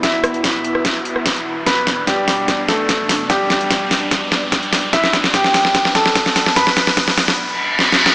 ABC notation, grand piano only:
X:1
M:4/4
L:1/8
Q:1/4=147
K:Em
V:1 name="Grand piano"
[Ee]8 | [B,B] z [G,G]3 [A,A]3 | [G,G]8 | [Ee] z [Gg]3 [Aa]3 |
[Bb]8 |]